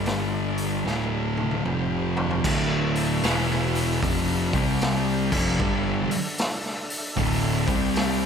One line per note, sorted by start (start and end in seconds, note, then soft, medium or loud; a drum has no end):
0.00 0.82 G1 loud
0.00 0.84 G2 medium
0.00 0.85 D3 loud
0.00 0.85 G3 medium
0.00 0.85 G3 loud
0.00 0.85 D4 medium
0.00 0.85 A4 medium
0.06 snare loud
0.06 open hi-hat medium
0.58 open hi-hat medium
0.85 1.61 D1 medium
0.85 1.64 D2 medium
0.85 1.64 A2 loud
0.85 1.64 D3 medium
0.85 1.64 D3 loud
0.85 1.64 A3 medium
0.85 1.64 E4 medium
0.85 snare medium
1.37 high tom medium
1.51 high tom medium
1.64 2.40 F1 medium
1.64 2.43 F2 medium
1.64 2.43 C3 medium
1.64 2.44 F3 loud
1.64 2.44 F3 medium
1.64 2.44 C4 medium
1.64 2.44 G4 medium
1.64 mid tom medium
2.17 floor tom loud
2.31 floor tom medium
2.44 3.20 D1 loud
2.44 3.23 D2 loud
2.44 3.24 A2 loud
2.44 3.24 D3 loud
2.44 3.23 D4 medium
2.44 3.23 A4 medium
2.44 3.23 E5 medium
2.44 kick loud
2.44 crash loud
2.95 open hi-hat medium
3.23 3.98 E1 loud
3.23 4.02 E2 loud
3.23 4.02 B2 loud
3.23 4.02 E3 loud
3.23 4.03 E4 medium
3.23 4.03 B4 medium
3.23 4.54 E5 medium
3.23 snare loud
3.23 open hi-hat medium
3.50 snare soft
3.75 open hi-hat medium
4.02 4.50 F1 loud
4.02 4.52 F2 loud
4.02 4.52 C3 loud
4.02 4.52 F3 loud
4.02 4.53 D4 medium
4.02 4.53 A4 medium
4.02 kick loud
4.02 open hi-hat medium
4.53 5.28 C2 loud
4.53 5.31 C3 loud
4.53 5.31 G3 loud
4.53 5.32 C4 medium
4.53 5.31 C4 loud
4.53 5.32 G4 medium
4.53 5.32 D5 medium
4.53 kick loud
4.53 open hi-hat medium
4.81 snare loud
4.81 open hi-hat medium
5.32 5.58 F1 loud
5.32 5.59 F2 loud
5.32 5.59 C3 loud
5.32 5.60 F3 loud
5.32 7.65 D4 medium
5.32 7.65 A4 medium
5.32 7.65 E5 medium
5.32 kick loud
5.32 crash loud
5.60 6.07 G1 loud
5.60 6.09 G2 medium
5.60 6.09 D3 loud
5.60 6.10 G3 loud
5.60 kick loud
6.11 open hi-hat medium
6.38 snare loud
6.38 open hi-hat loud
6.66 snare soft
6.90 open hi-hat medium
7.17 7.64 D1 loud
7.17 7.66 D2 loud
7.17 7.67 A2 loud
7.17 7.67 D3 loud
7.17 kick loud
7.17 open hi-hat medium
7.66 8.26 C2 loud
7.66 8.26 C3 medium
7.66 8.26 G3 loud
7.66 8.26 C4 medium
7.66 8.26 C4 loud
7.66 8.26 G4 medium
7.66 8.26 D5 medium
7.66 kick loud
7.66 open hi-hat medium
7.96 snare loud
7.96 open hi-hat loud